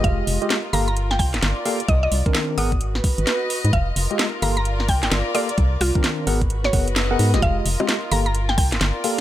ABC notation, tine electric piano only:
X:1
M:4/4
L:1/16
Q:"Swing 16ths" 1/4=130
K:Fm
V:1 name="Tine electric piano"
[A,FGe]3 [A,FGe] z2 [B,G=Af] z6 z [B,GAf] z | z3 [E,C=DB]3 [_CAB_g] z8 z | z3 [A,FGe] z2 [B,G=Af] z6 z [B,GAf] z | z3 [E,C=DB]3 [_CAB_g] z3 [CABg] z2 [CABg]2 [A,F=Ge]- |
[A,FGe]2 z [A,FGe] z2 [B,G=Af] z6 z [B,GAf] z |]